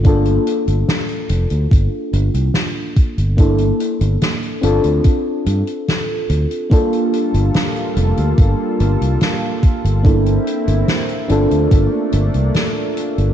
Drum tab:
HH |xxxxxxxxx-xxx-xx|xxxxxxxxx-xxx-xx|xxxxxxxxx-xxx-xx|xxxxxxxxx-xxx-xx|
SD |----o-------o---|----o-------o---|----o-------o---|----o-------o---|
BD |o-------o-----o-|o-------o-------|o-------o-----o-|o-------o-------|